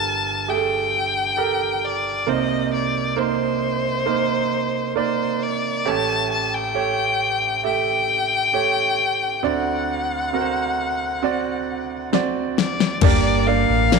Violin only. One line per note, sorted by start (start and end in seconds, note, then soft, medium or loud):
0.00 0.51 A5 medium
0.50 1.86 G5 medium
1.84 2.30 D5 medium
2.29 2.73 D#5 medium
2.73 3.20 D5 medium
3.19 4.97 C5 medium
4.97 5.44 C5 medium
5.42 5.89 D5 medium
5.87 6.31 A5 medium
6.32 6.55 A5 medium
6.54 7.65 G5 medium
7.65 9.46 G5 loud
9.45 12.13 F#5 medium
12.59 13.00 D5 medium
13.03 13.48 D5 medium
13.47 13.99 F5 medium